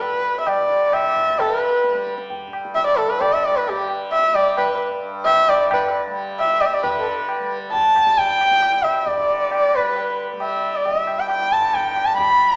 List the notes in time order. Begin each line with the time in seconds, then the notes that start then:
Already playing: G2 D3 G3
0.01 B4, tabla tin, tabla ge
0.11 G2
0.40 E5
0.47 D5, tabla na
0.70 D3
0.93 E5, tabla na, tabla ge
1.16 tabla ge
1.30 G3
1.39 A4, tabla tin, tabla ge
1.48 B4
1.59 B4
1.84 tabla te
1.90 G3
1.95 tabla te
2.07 tabla ke
2.18 tabla te
2.30 tabla tin, tabla ge
2.47 G2
2.53 tabla na
2.65 tabla ke
2.75 E5, tabla tin, tabla ge
2.85 D5 E5
2.98 A4
3.07 D3 A4 B4
3.21 D5, tabla na, tabla ge
3.30 D5 E5
3.43 D5 E5
3.57 B4
3.66 G3 G4, tabla tin, tabla ge
3.79 G4
3.89 tabla na
4.12 E5, tabla na
4.23 E5
4.30 G3
4.35 D5, tabla na
4.57 B4, tabla na, tabla ge
4.69 B4
4.89 G2
5.25 E5, tabla na
5.35 E5
5.47 D3 D5, tabla na
5.58 D5
5.71 B4, tabla na, tabla ge
6.07 G3
6.39 E5, tabla na
6.49 E5
6.61 D5, tabla na
6.66 G3 E5
6.74 D5
6.83 D3 B4, tabla tin, tabla ge
6.92 B4
6.99 A4
7.08 B4
7.29 tabla na
7.40 G3
7.72 A5, tabla tin, tabla ge
7.76 B5
7.84 A5
7.96 G3, tabla na
8.07 tabla ke
8.18 G5, tabla tin, tabla ge
8.30 G5
8.41 tabla na
8.51 tabla ke
8.56 G2
8.62 tabla na, tabla ge
8.84 E5
9.06 D5, tabla tin, tabla ge
9.17 D3 D5
9.52 D5, tabla na
9.62 D5
9.73 G3 B4, tabla na
9.84 B4
9.96 tabla tin
10.33 G3
10.40 E5, tabla na
10.53 E5
10.76 D5
10.84 D5 E5, tabla tin, tabla ge
10.93 G2 E5
11.07 tabla na
11.19 G5
11.28 G5, tabla na
11.40 G5
11.51 D3 A5
11.74 G5, tabla tin, tabla ge
11.85 G5
11.96 tabla na
12.06 G3 A5
12.17 A5 B5, tabla tin, tabla ge
12.28 B5